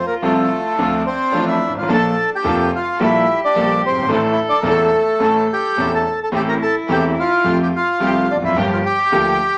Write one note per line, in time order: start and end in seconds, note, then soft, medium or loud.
0.00 0.79 F4 loud
0.07 0.15 A#3 medium
0.07 0.14 A#4 loud
0.22 0.46 C2 medium
0.22 0.46 C3 medium
0.22 0.46 F3 medium
0.22 0.46 A3 medium
0.22 1.02 A3 medium
0.22 0.46 C4 medium
0.22 0.47 F4 medium
0.22 0.47 A4 medium
0.22 1.02 A4 loud
0.77 1.02 D2 medium
0.77 1.02 D3 medium
0.77 1.02 F3 medium
0.77 1.01 C4 medium
0.77 1.02 C4 medium
0.77 1.88 D4 loud
0.77 1.01 D4 medium
0.77 1.02 D4 medium
0.77 1.01 F4 medium
0.77 1.02 A4 medium
1.06 1.45 C4 medium
1.06 1.45 C5 loud
1.32 1.56 A1 medium
1.32 1.56 A2 medium
1.32 1.56 F3 medium
1.32 1.56 C4 medium
1.32 1.56 D4 medium
1.32 1.56 F4 medium
1.32 1.56 A4 medium
1.48 1.74 E4 medium
1.48 1.73 E5 medium
1.69 1.75 G1 medium
1.74 1.82 G#1 medium
1.79 1.90 F4 medium
1.79 1.90 F5 medium
1.83 1.89 A1 medium
1.89 2.12 A#1 medium
1.89 2.12 A#2 medium
1.89 2.12 F3 medium
1.89 2.12 A#3 medium
1.89 2.40 D4 medium
1.89 2.12 D4 medium
1.89 2.12 A4 loud
1.89 2.13 A4 medium
1.94 2.30 A4 medium
1.94 2.30 A5 loud
2.36 2.72 G4 medium
2.36 2.72 G5 loud
2.44 2.68 F1 medium
2.44 2.67 F2 loud
2.44 2.67 F3 medium
2.44 2.67 A#3 medium
2.44 2.68 A#3 medium
2.44 2.67 D4 medium
2.44 2.68 D4 medium
2.44 3.02 F4 loud
2.44 2.67 A4 loud
2.44 2.68 A4 loud
2.76 3.00 F4 medium
2.76 3.00 F5 loud
2.99 3.23 A#1 loud
2.99 3.23 A#2 loud
2.99 3.23 G3 medium
2.99 3.22 A#3 medium
2.99 3.23 A#3 medium
2.99 3.23 D4 medium
2.99 3.22 G4 medium
2.99 4.11 G4 loud
2.99 3.22 A4 loud
2.99 3.24 A4 loud
3.04 3.40 E4 medium
3.04 3.40 E5 loud
3.45 3.82 D4 medium
3.45 3.82 D5 loud
3.54 3.79 A#1 medium
3.54 3.79 A#2 medium
3.54 3.79 G3 medium
3.54 3.78 A#3 loud
3.54 3.79 A#3 medium
3.54 3.79 D4 medium
3.54 3.78 G4 medium
3.54 3.78 A4 loud
3.54 3.79 A4 medium
3.86 3.97 F#1 medium
3.86 4.10 C4 medium
3.86 4.10 C5 loud
3.97 4.04 G1 medium
4.02 4.10 G#1 medium
4.08 4.33 A1 loud
4.08 4.33 A2 loud
4.08 4.33 E3 medium
4.08 4.33 A3 medium
4.08 4.33 D4 medium
4.08 4.34 D4 medium
4.08 4.34 E4 medium
4.08 4.33 A4 loud
4.08 4.34 A4 medium
4.08 5.18 A4 loud
4.15 4.22 C4 medium
4.15 4.22 C5 medium
4.32 4.40 E4 medium
4.32 4.40 E5 loud
4.49 4.60 D4 medium
4.49 4.59 D5 loud
4.61 4.88 E1 loud
4.61 4.88 E2 loud
4.61 4.88 E3 medium
4.61 4.88 A3 medium
4.61 4.88 D4 medium
4.61 4.88 A4 loud
4.61 4.67 A#4 medium
4.65 4.89 D4 medium
4.65 4.89 E4 medium
4.65 4.89 A4 loud
4.69 5.48 A3 medium
4.69 5.47 A4 loud
5.20 5.44 A1 medium
5.20 5.44 A2 medium
5.20 5.44 E3 medium
5.20 5.44 A3 medium
5.20 5.44 C#4 medium
5.20 5.45 C#4 medium
5.20 5.45 E4 medium
5.20 5.44 A4 medium
5.20 5.45 A4 medium
5.20 6.02 A4 loud
5.53 5.91 G4 medium
5.53 5.95 G5 loud
5.77 6.01 E1 medium
5.77 6.01 E2 medium
5.77 6.01 E3 medium
5.77 6.01 A3 medium
5.77 6.01 C#4 medium
5.77 6.01 E4 medium
5.77 6.01 A4 medium
5.77 6.02 A4 medium
5.95 6.20 A4 medium
5.95 6.20 A5 medium
6.23 6.29 A4 medium
6.23 6.29 A5 medium
6.32 6.57 A1 medium
6.32 6.56 A2 loud
6.32 6.56 E3 medium
6.32 6.56 A3 medium
6.32 6.57 C4 medium
6.32 7.46 E4 loud
6.32 6.57 G4 medium
6.32 6.41 G4 medium
6.32 6.57 A4 medium
6.36 6.42 G5 loud
6.49 6.55 A#4 medium
6.49 6.55 A#5 loud
6.63 6.76 A4 medium
6.63 6.75 A5 loud
6.88 7.13 E1 medium
6.88 7.13 E2 medium
6.88 7.13 E3 medium
6.88 7.13 A3 medium
6.88 7.12 C4 medium
6.88 7.13 C4 medium
6.88 7.12 G4 medium
6.88 7.13 G4 medium
6.88 7.12 A4 loud
6.93 7.05 G4 medium
6.93 7.05 G5 loud
7.20 7.58 F4 medium
7.20 7.58 F5 loud
7.44 7.69 F2 medium
7.44 7.69 F3 medium
7.44 7.68 A3 medium
7.44 7.69 A3 medium
7.44 7.69 C4 medium
7.44 7.69 F4 medium
7.44 8.58 F4 loud
7.44 7.69 G4 medium
7.62 7.68 G4 medium
7.62 7.68 G5 medium
7.76 8.27 F4 medium
7.76 8.32 F5 loud
8.00 8.24 C2 medium
8.00 8.24 C3 medium
8.00 8.24 F3 medium
8.00 8.24 A3 medium
8.00 8.25 A3 medium
8.00 8.24 C4 medium
8.00 8.25 F4 medium
8.00 8.24 G4 medium
8.00 8.25 G4 loud
8.31 8.37 D4 medium
8.31 8.37 D5 medium
8.35 8.43 E2 medium
8.42 8.50 F2 medium
8.42 8.57 E4 medium
8.42 8.57 E5 medium
8.49 8.56 F#2 medium
8.56 8.80 G1 loud
8.56 8.80 G2 medium
8.56 8.80 F3 medium
8.56 8.80 A#3 medium
8.56 8.80 D4 medium
8.56 8.80 F4 medium
8.56 9.58 G4 loud
8.56 8.80 G4 loud
8.56 8.81 G4 medium
8.73 8.79 F4 medium
8.73 8.79 F5 medium
8.86 9.58 G4 loud
8.86 9.58 G5 loud
9.12 9.36 D2 medium
9.12 9.36 D3 medium
9.12 9.35 F3 medium
9.12 9.35 A#3 medium
9.12 9.36 D4 medium
9.12 9.36 F4 medium
9.12 9.36 G4 medium